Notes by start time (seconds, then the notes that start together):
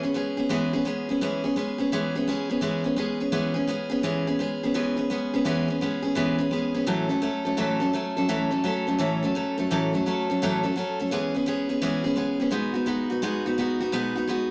0.03 B3 C#4 G#4
0.14 G#3 B3 C#4 G#4
0.37 B3 C#4 G#4
0.49 E3 G#3 B3 C#4 G#4
0.73 B3 C#4 G#4
0.85 G#3 B3 C#4 G#4
1.09 B3 C#4 G#4
1.21 E3 G#3 B3 C#4 G#4
1.44 B3 C#4 G#4
1.56 G#3 B3 C#4 G#4
1.78 B3 C#4 G#4
1.92 E3 G#3 B3 C#4 G#4
2.15 B3 C#4 G#4
2.27 G#3 B3 C#4 G#4
2.49 B3 C#4 G#4
2.61 E3 G#3 B3 C#4 G#4
2.84 B3 C#4 G#4
2.96 G#3 B3 C#4 G#4
3.20 B3 C#4 G#4
3.32 E3 G#3 B3 C#4 G#4
3.54 B3 C#4 G#4
3.67 G#3 B3 C#4 G#4
3.90 B3 C#4 G#4
4.03 E3 G#3 B3 C#4 G#4
4.27 B3 C#4 G#4
4.39 G#3 B3 C#4 G#4
4.63 B3 C#4 G#4
4.74 E3 G#3 B3 C#4 G#4
4.97 B3 C#4 G#4
5.10 G#3 B3 C#4 G#4
5.34 B3 C#4 G#4
5.45 E3 G#3 B3 C#4 G#4
5.68 B3 C#4 G#4
5.81 G#3 B3 C#4 G#4
6.02 B3 C#4 G#4
6.15 E3 G#3 B3 C#4 G#4
6.38 B3 C#4 G#4
6.51 G#3 B3 C#4 G#4
6.74 B3 C#4 G#4
6.86 A2 E3 F#3 A3 C#4 A4
7.09 F#3 A3 C#4 A4
7.22 F#3 A3 C#4 A4
7.45 F#3 A3 C#4 A4
7.57 A2 E3 F#3 A3 C#4 A4
7.80 F#3 A3 C#4 A4
7.93 F#3 A3 C#4 A4
8.17 F#3 A3 C#4 A4
8.28 A2 E3 F#3 A3 C#4 A4
8.51 F#3 A3 C#4 A4
8.64 F#3 A3 C#4 A4
8.87 F#3 A3 C#4 A4
8.98 A2 E3 F#3 A3 C#4 A4
9.23 F#3 A3 C#4 A4
9.35 F#3 A3 C#4 A4
9.58 F#3 A3 C#4 A4
9.71 A2 E3 F#3 A3 C#4 A4
9.93 F#3 A3 C#4 A4
10.06 F#3 A3 C#4 A4
10.30 F#3 A3 C#4 A4
10.42 A2 E3 F#3 A3 C#4 A4
10.63 F#3 A3 C#4 A4
10.76 F#3 A3 C#4 A4
10.99 F#3 A3 C#4 A4
11.11 E3 G#3 B3 C#4 G#4
11.34 B3 C#4 G#4
11.46 G#3 B3 C#4 G#4
11.69 B3 C#4 G#4
11.81 E3 G#3 B3 C#4 G#4
12.04 B3 C#4 G#4
12.16 G#3 B3 C#4 G#4
12.40 B3 C#4 G#4
12.51 B2 G#3 B3 D#4 F#4
12.74 B3 D#4 F#4
12.86 G#3 B3 D#4 F#4
13.10 B3 D#4 F#4
13.22 B2 G#3 B3 D#4 F#4
13.46 B3 D#4 F#4
13.58 G#3 B3 D#4 F#4
13.80 B3 D#4 F#4
13.92 B2 G#3 B3 D#4 F#4
14.15 B3 D#4 F#4
14.27 G#3 B3 D#4 F#4